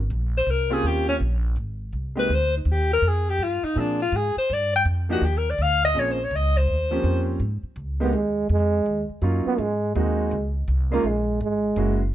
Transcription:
0.10 upright bass A#1
0.37 alto saxophone C5
0.46 upright bass C2
0.51 alto saxophone A#4
0.70 grand piano A#3 C4 C#4 F4 G4, alto saxophone G#4
0.83 upright bass D#2, alto saxophone G4
1.09 alto saxophone C#4
1.20 upright bass A#1
1.56 upright bass G#1
1.93 upright bass C2
2.15 grand piano G#3 A#3 C4 D#4 G4, alto saxophone B4
2.29 upright bass D2
2.34 alto saxophone C5
2.57 alto saxophone D#4
2.65 upright bass D#2
2.71 alto saxophone G4
2.93 alto saxophone A#4
3.02 upright bass F2
3.08 alto saxophone G#4
3.30 alto saxophone G4
3.39 upright bass G2
3.43 alto saxophone F4
3.63 alto saxophone D#4, muted upright bass stroke
3.75 upright bass A#2, grand piano F3 A#3 C4 D4 G#4, alto saxophone D4
4.02 alto saxophone F4
4.12 upright bass G#2
4.16 alto saxophone G#4
4.36 alto saxophone C5, muted upright bass stroke
4.50 upright bass G2, alto saxophone D5
4.76 alto saxophone G5
4.85 upright bass F2
5.09 grand piano F3 A#3 D4 D#4 G4, alto saxophone F#4
5.21 upright bass D#2, alto saxophone G4
5.38 alto saxophone A#4
5.50 alto saxophone D5
5.58 upright bass D2, alto saxophone F5
5.85 alto saxophone D#5
5.94 upright bass A#1, grand piano F3 A#3 C4 C#4 G#4
5.99 alto saxophone C#5
6.12 alto saxophone C5
6.24 alto saxophone C#5
6.31 upright bass C#2
6.36 alto saxophone D#5
6.57 alto saxophone C5
6.91 grand piano F3 A#3 C4 C#4 G4
7.04 upright bass F2
7.40 upright bass G#2
7.63 muted upright bass stroke
7.76 upright bass C#2
8.00 grand piano G#3 A#3 C4 D#4 G4, trombone B3
8.13 upright bass D#2, trombone G#3
8.49 upright bass F2, trombone G#3
8.86 upright bass D#2
9.10 muted upright bass stroke
9.22 upright bass F#2, grand piano F#3 A#3 C#4 D#4 F4
9.46 trombone B3, muted upright bass stroke
9.58 upright bass G#2, trombone G#3
9.95 upright bass D#2, grand piano G#3 A#3 C4 D#4 F#4, trombone G#3
10.31 upright bass C#2
10.68 upright bass C2
10.92 grand piano G#3 A#3 C#4 D#4 F4, trombone A#3
11.04 upright bass A#1, trombone G#3
11.41 upright bass G#1, trombone G#3
11.76 upright bass F#1, grand piano G#3 A#3 C#4 E4 F#4

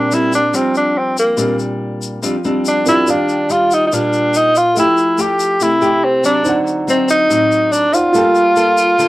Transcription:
Already playing: nylon-string guitar A#2, grand piano C4 G4 A#4 D5, tenor saxophone D4
0.11 nylon-string guitar G3 C4 D4, tenor saxophone E4, shaker
0.33 tenor saxophone D4, shaker
0.53 nylon-string guitar F3 G3 C4 D4, tenor saxophone C4, shaker
0.75 tenor saxophone D4, shaker
0.98 tenor saxophone C4
1.17 tenor saxophone A#3, shaker
1.37 nylon-string guitar A#2 G3 C4 D4, shaker
1.59 shaker
2.02 shaker
2.22 nylon-string guitar F3 G3 C4 D4, shaker
2.44 nylon-string guitar G3 C4 D4, shaker
2.65 tenor saxophone D4, shaker
2.84 nylon-string guitar G3 D4 F4, grand piano C4 G4 A#4 D5, shaker
2.88 tenor saxophone E4
3.06 nylon-string guitar D#3, grand piano G4 D5 F5, shaker
3.10 tenor saxophone D4
3.29 shaker
3.50 nylon-string guitar G3 D4 F4, tenor saxophone F4, shaker
3.71 tenor saxophone D#4, shaker
3.87 tenor saxophone D#4
3.92 nylon-string guitar A#2 G3 D4 F4, tenor saxophone D4, shaker
4.13 shaker
4.34 tenor saxophone D#4, shaker
4.55 tenor saxophone F4, shaker
4.75 nylon-string guitar F3 A3 E4 G4, grand piano A4 E5, shaker
4.79 tenor saxophone E4, grand piano G5
4.97 shaker
5.18 nylon-string guitar A3 E4 G4, tenor saxophone G4, shaker
5.39 shaker
5.60 nylon-string guitar C3 A3 E4 G4, tenor saxophone E4, shaker
5.81 nylon-string guitar A3 E4 G4, shaker
6.05 tenor saxophone C4
6.24 nylon-string guitar F#3 C4, tenor saxophone D4, shaker
6.43 nylon-string guitar D3, grand piano D#4 C5, shaker
6.47 grand piano D5 F#5
6.67 shaker
6.87 nylon-string guitar F#3 C4 D#4, tenor saxophone C4, shaker
7.09 tenor saxophone D#4, shaker
7.30 nylon-string guitar A2 F#3 C4 D#4, shaker
7.52 shaker
7.72 tenor saxophone D4, shaker
7.92 grand piano D#4 C5 D5 F#5, tenor saxophone F4, shaker
8.12 nylon-string guitar G3 A#3 F4 A4, grand piano F4 A4, shaker
8.18 grand piano G5
8.35 shaker
8.56 nylon-string guitar A#3 F4 A4, shaker
8.77 shaker
8.98 nylon-string guitar D3 A#3 F4 A4, shaker

